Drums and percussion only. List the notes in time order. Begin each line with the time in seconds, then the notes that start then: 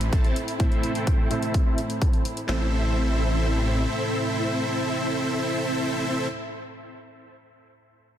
0.01 closed hi-hat
0.13 kick, closed hi-hat
0.24 closed hi-hat
0.36 closed hi-hat
0.48 closed hi-hat
0.60 kick, closed hi-hat
0.72 closed hi-hat
0.83 closed hi-hat
0.95 closed hi-hat
1.07 kick, closed hi-hat
1.31 closed hi-hat
1.43 closed hi-hat
1.54 kick, closed hi-hat
1.78 closed hi-hat
1.90 closed hi-hat
2.02 kick, closed hi-hat
2.13 closed hi-hat
2.25 closed hi-hat
2.37 closed hi-hat
2.49 snare, clap